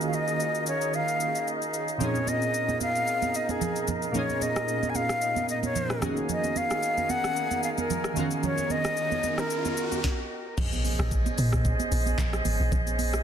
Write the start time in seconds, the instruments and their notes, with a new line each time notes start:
Already playing: synth keys D#3 A#3 C#4 F4 F#4 G#4, flute section D#4 G#4 A#4 D#5 F5
0.01 shaker
0.08 flute F5
0.13 flute D#5, shaker
0.28 shaker
0.40 shaker
0.55 shaker
0.67 flute C#5, shaker
0.81 shaker
0.93 flute F5, shaker
1.08 shaker
1.20 shaker
1.35 shaker
1.48 shaker
1.62 shaker
1.74 shaker
1.88 shaker
1.98 synth keys A#2 C4 C#4, flute section A#4, low conga, shaker
2.02 synth keys D#4 F4 G#4, flute C#5
2.15 high conga, shaker
2.27 flute D#5, high conga, shaker
2.42 shaker
2.54 shaker
2.69 high conga, shaker
2.81 flute F5, high conga, shaker
2.96 shaker
3.07 shaker
3.22 high conga, shaker
3.35 flute D#5, shaker
3.49 flute G#4, high conga, shaker
3.61 low conga, shaker
3.76 shaker
3.88 high conga, low conga, shaker
4.02 shaker
4.12 synth keys A#2 A#3 C#4, flute C#5, low conga, shaker
4.16 synth keys D#4 F4 G#4
4.29 high conga, shaker
4.41 flute D#5, high conga, shaker
4.56 cross-stick, shaker
4.68 shaker
4.83 high conga, shaker
4.90 flute G#5
4.95 flute F5, high conga, shaker
5.09 cross-stick, shaker
5.22 shaker
5.36 high conga, shaker
5.49 flute D#5, shaker
5.63 flute C#5, high conga, shaker
5.75 low conga, shaker
5.90 cross-stick, shaker
5.99 synth keys D#3 A#3 C#4, flute section G#4 A#4 G#5, cross-stick, high conga, low conga, shaker
6.03 synth keys D#4 F#4 G#4
6.17 shaker
6.29 flute D#5, riser, low conga, shaker
6.44 high conga, shaker
6.56 flute F5, high conga, shaker
6.71 cross-stick, shaker
6.83 shaker
6.98 high conga, shaker
7.09 flute F#5, high conga, shaker
7.24 cross-stick, shaker
7.36 shaker
7.51 high conga, shaker
7.63 flute F5, shaker
7.78 flute A#4, high conga, shaker
7.90 low conga, shaker
8.04 cross-stick, shaker
8.13 synth keys D#3 A#3 C#4, high conga, low conga, shaker
8.18 synth keys F4 F#4 A#4
8.31 shaker
8.43 flute C#5, low conga, shaker
8.58 high conga, shaker
8.70 flute D#5, high conga, shaker
8.84 cross-stick, shaker
8.97 shaker
9.12 high conga, shaker
9.23 high conga, shaker
9.38 flute A#4, cross-stick, shaker
9.50 shaker
9.65 high conga, shaker
9.77 shaker
9.92 high conga, shaker
10.04 kick, snare
10.58 log drum bass A#1, flute section C#4 G#4 C5 D#5, kick, crash, impact, low conga, shaker
10.72 high conga, shaker
10.84 open hi-hat, high conga, shaker
10.99 log drum bass A#1, cross-stick, shaker
11.11 kick, shaker
11.26 high conga, shaker
11.38 log drum bass A#2, open hi-hat, high conga, shaker
11.53 kick, cross-stick, shaker
11.65 kick, shaker
11.79 high conga, shaker
11.92 log drum bass A#1, open hi-hat, shaker
12.06 high conga, shaker
12.18 log drum bass A#1, kick, clap, low conga, shaker
12.33 cross-stick, shaker
12.45 log drum bass G#1, open hi-hat, high conga, low conga, shaker
12.60 log drum bass A#1
12.72 log drum bass A#1, kick, low conga, shaker
12.87 high conga, shaker
12.99 open hi-hat, high conga, shaker
13.13 cross-stick, shaker